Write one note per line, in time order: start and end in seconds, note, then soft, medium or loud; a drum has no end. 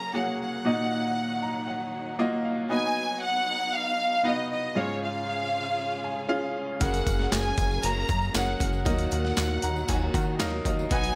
0.00 0.67 C#3 medium
0.00 0.64 F#3 medium
0.00 0.14 A#3 medium
0.00 0.64 C#4 medium
0.00 0.14 F#4 medium
0.00 0.14 G#4 medium
0.00 0.64 G#4 medium
0.00 0.64 A#4 medium
0.00 0.15 C#5 medium
0.00 0.14 A#5 loud
0.14 0.59 A#3 medium
0.14 0.59 F#4 medium
0.14 0.60 G#4 medium
0.14 0.60 C#5 medium
0.14 0.40 F#5 medium
0.41 2.16 F#5 loud
0.65 1.38 A#2 medium
0.65 2.69 D#3 medium
0.65 4.72 F#3 medium
0.65 1.56 A#3 medium
0.65 1.56 D#4 medium
0.65 2.69 D#4 medium
0.65 1.56 F#4 medium
0.65 1.56 D#5 medium
1.42 1.66 A#5 medium
1.68 2.16 F#5 medium
2.19 2.64 A#3 loud
2.19 2.65 F4 medium
2.19 2.65 F#4 medium
2.19 2.65 D#5 loud
2.45 2.69 F5 medium
2.69 3.61 B3 medium
2.69 4.74 B3 medium
2.69 3.61 D#4 medium
2.69 4.74 D#4 medium
2.69 3.61 F#4 medium
2.69 3.61 D#5 medium
2.69 3.19 G#5 loud
3.23 3.74 F#5 loud
3.75 4.25 F5 loud
4.23 4.69 B3 medium
4.23 4.70 D#4 medium
4.23 4.70 F#4 medium
4.23 4.51 D#5 loud
4.23 4.70 F#5 medium
4.52 4.75 D#5 medium
4.75 5.49 G#2 medium
4.75 6.79 C#3 medium
4.75 5.66 C#4 medium
4.75 8.82 C#4 medium
4.75 5.66 F4 medium
4.75 6.79 F4 medium
4.75 5.67 G#4 medium
4.75 6.79 G#4 medium
4.75 5.02 C#5 medium
4.75 5.67 F5 medium
5.04 6.52 F5 loud
6.04 6.28 G#5 medium
6.29 6.74 C#4 medium
6.29 6.75 F4 medium
6.29 6.75 G#4 medium
6.29 6.75 F5 loud
6.80 7.02 F#1 loud
6.80 7.82 F#2 medium
6.80 7.54 C#3 medium
6.80 7.83 C#3 medium
6.80 8.84 F#3 medium
6.80 7.83 G#3 medium
6.80 7.84 A#3 medium
6.80 7.71 C#4 medium
6.80 7.71 G#4 medium
6.80 8.84 G#4 medium
6.80 7.71 A#4 medium
6.80 8.84 A#4 medium
6.80 7.72 F#5 medium
6.80 7.29 F#5 medium
6.80 kick loud
6.80 closed hi-hat medium
6.80 tambourine medium
6.84 7.84 C#4 loud
6.84 7.85 F#4 medium
6.94 closed hi-hat medium
6.94 tambourine soft
7.07 7.28 F#1 loud
7.07 kick loud
7.07 closed hi-hat medium
7.07 tambourine medium
7.19 snare soft
7.32 7.53 F#1 loud
7.32 7.84 G#5 loud
7.32 snare loud
7.32 clap loud
7.32 closed hi-hat loud
7.32 tambourine medium
7.58 7.79 F#1 loud
7.58 kick medium
7.58 closed hi-hat medium
7.58 tambourine medium
7.71 tambourine soft
7.82 8.05 F#1 loud
7.82 8.09 F#2 medium
7.82 8.09 C#3 medium
7.82 8.10 G#3 loud
7.82 8.10 A#3 medium
7.82 8.09 C#4 medium
7.82 8.07 F#4 medium
7.82 8.35 A#5 loud
7.82 closed hi-hat loud
7.82 tambourine medium
8.09 8.30 F#2 loud
8.09 8.33 G#3 soft
8.09 8.34 A#3 medium
8.09 8.35 C#4 medium
8.09 8.34 F#4 medium
8.09 kick loud
8.09 closed hi-hat medium
8.09 tambourine medium
8.22 tambourine soft
8.34 8.56 F#1 loud
8.34 8.60 G#3 medium
8.34 8.61 A#3 medium
8.34 8.79 C#4 medium
8.34 8.60 C#4 medium
8.34 8.59 F#4 medium
8.34 8.80 G#4 medium
8.34 8.80 A#4 medium
8.34 8.80 F#5 medium
8.34 8.83 F#5 medium
8.34 snare loud
8.34 clap loud
8.34 closed hi-hat medium
8.34 tambourine loud
8.60 8.88 F#1 loud
8.60 8.86 G#3 medium
8.60 8.86 A#3 medium
8.60 8.86 C#4 medium
8.60 8.86 F#4 medium
8.60 kick medium
8.60 closed hi-hat medium
8.60 tambourine medium
8.73 tambourine soft
8.85 9.07 D#2 loud
8.85 9.59 A#2 medium
8.85 9.88 D#3 medium
8.85 10.89 D#3 medium
8.85 9.76 F#3 medium
8.85 9.88 F#3 medium
8.85 11.15 F#3 medium
8.85 9.88 A#3 medium
8.85 9.76 D#4 medium
8.85 11.15 D#4 medium
8.85 9.77 A#4 medium
8.85 9.77 D#5 medium
8.85 10.37 F#5 loud
8.85 kick loud
8.85 closed hi-hat medium
8.85 tambourine medium
8.89 9.88 F4 loud
8.89 9.90 F#4 medium
8.98 closed hi-hat soft
8.98 tambourine soft
9.11 9.33 D#2 loud
9.11 closed hi-hat medium
9.11 tambourine medium
9.25 snare soft
9.37 9.59 D#2 loud
9.37 snare loud
9.37 clap loud
9.37 closed hi-hat loud
9.37 tambourine medium
9.62 9.84 D#2 loud
9.62 9.87 A#5 medium
9.62 closed hi-hat medium
9.62 tambourine soft
9.76 tambourine soft
9.88 10.10 D#2 loud
9.88 10.14 D#3 medium
9.88 10.14 F#3 medium
9.88 10.14 A#3 loud
9.88 10.14 F4 loud
9.88 10.12 F#4 loud
9.88 10.13 G#5 medium
9.88 kick medium
9.88 closed hi-hat loud
9.88 tambourine medium
10.13 10.42 D#3 loud
10.13 10.39 A#3 soft
10.13 10.40 F4 medium
10.13 10.39 F#4 medium
10.13 10.38 F#5 medium
10.13 kick loud
10.13 closed hi-hat medium
10.13 tambourine medium
10.39 10.61 D#2 loud
10.39 10.90 F#3 medium
10.39 10.85 F#3 medium
10.39 10.91 A#3 medium
10.39 10.85 D#4 loud
10.39 10.92 F4 medium
10.39 10.92 F#4 medium
10.39 10.85 A#4 medium
10.39 10.85 F5 loud
10.39 snare loud
10.39 clap loud
10.39 closed hi-hat medium
10.39 tambourine medium
10.65 10.87 D#2 loud
10.65 10.89 D#5 medium
10.65 kick loud
10.65 closed hi-hat medium
10.65 tambourine medium
10.79 tambourine soft
10.90 11.12 B1 loud
10.90 11.15 B2 medium
10.90 11.15 F#3 medium
10.90 11.15 B3 medium
10.90 11.15 D#4 medium
10.90 11.15 D#4 loud
10.90 11.15 F#4 medium
10.90 11.15 F#4 loud
10.90 11.15 B4 medium
10.90 11.15 F#5 medium
10.90 11.15 G#5 loud
10.90 kick loud
10.90 closed hi-hat medium
10.90 tambourine medium
11.04 closed hi-hat medium
11.04 tambourine soft